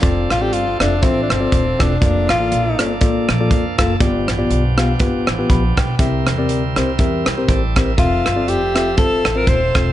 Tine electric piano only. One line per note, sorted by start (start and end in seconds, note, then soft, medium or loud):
0.00 0.29 C4 medium
0.00 0.29 F4 medium
0.00 0.29 A4 medium
0.00 0.29 D5 medium
0.00 0.28 F5 medium
0.41 0.65 C4 medium
0.41 0.65 F4 medium
0.41 0.65 A4 medium
0.41 0.65 D5 medium
0.80 0.94 C4 medium
0.80 0.94 F4 soft
0.80 0.94 A4 medium
0.80 0.94 E5 medium
1.02 1.29 C4 medium
1.02 1.29 F4 medium
1.02 1.29 A4 medium
1.02 1.29 E5 medium
1.40 1.64 C4 medium
1.40 1.64 F4 medium
1.40 1.64 A4 medium
1.40 1.64 D5 medium
1.79 1.94 C4 medium
1.79 1.93 F4 medium
1.79 1.94 A4 medium
1.79 1.94 D5 medium
2.01 2.28 A#3 medium
2.01 2.28 F4 medium
2.01 2.28 A4 medium
2.01 2.28 D5 medium
2.40 2.64 A#3 medium
2.40 2.64 F4 medium
2.40 2.64 A4 medium
2.40 2.64 D5 medium
2.79 2.93 A#3 medium
2.79 2.93 F4 medium
2.79 2.93 A4 medium
2.79 2.93 D5 medium
3.01 3.28 A#3 medium
3.01 3.28 F4 medium
3.01 3.28 A4 medium
3.01 3.27 D5 medium
3.40 3.64 A#3 medium
3.40 3.64 F4 medium
3.40 3.64 A4 medium
3.40 3.64 D5 medium
3.78 3.93 A#3 medium
3.78 3.93 F4 medium
3.78 3.93 A4 medium
3.78 3.93 F5 medium
4.00 4.74 G2 medium
4.00 4.27 B3 medium
4.00 4.27 F4 medium
4.00 4.27 G4 medium
4.00 4.27 D5 medium
4.38 4.63 B3 medium
4.38 4.63 F4 medium
4.38 4.62 G4 medium
4.38 4.63 D5 medium
4.77 4.92 B3 medium
4.77 4.92 F4 medium
4.77 4.92 G4 medium
4.77 4.92 F5 medium
5.00 5.26 B3 medium
5.00 5.27 F4 medium
5.00 5.27 G4 medium
5.00 5.26 B4 medium
5.39 5.62 B3 medium
5.39 5.63 F4 medium
5.39 5.62 G4 medium
5.39 5.62 B4 medium
5.50 5.76 B5 medium
5.78 6.25 G5 medium
6.00 6.73 C3 medium
6.00 6.26 C4 medium
6.00 6.26 G4 medium
6.00 6.26 A#4 medium
6.00 6.26 E5 medium
6.38 6.62 C4 medium
6.38 6.62 G4 medium
6.38 6.62 A#4 medium
6.38 6.62 D5 medium
6.77 6.91 C4 medium
6.77 6.91 G4 medium
6.77 6.91 A#4 medium
6.77 6.91 C5 medium
6.99 7.25 C4 medium
6.99 7.25 G4 medium
6.99 7.25 A#4 medium
6.99 7.25 E5 medium
7.38 7.61 C4 medium
7.38 7.61 G4 medium
7.38 7.61 A#4 medium
7.38 7.61 C5 medium
7.76 7.90 C4 medium
7.76 7.90 G4 medium
7.76 7.90 A#4 medium
7.76 7.90 C5 medium
7.98 8.24 C4 medium
7.98 8.24 F4 medium
7.98 8.24 A4 medium
7.98 8.24 E5 medium
8.36 8.60 C4 medium
8.36 8.60 F4 medium
8.36 8.60 A4 medium
8.36 8.60 D5 medium
8.75 8.89 C4 medium
8.75 8.89 F4 medium
8.75 8.89 A4 medium
8.75 8.89 E5 medium
8.97 9.24 C4 medium
8.97 9.24 F4 medium
8.97 9.24 A4 medium
8.97 9.24 C5 medium
9.35 9.59 C4 medium
9.35 9.59 F4 medium
9.35 9.59 A4 medium
9.35 9.59 C5 medium
9.75 9.89 C4 medium
9.75 9.89 F4 medium
9.75 9.89 A4 medium
9.75 9.89 C5 medium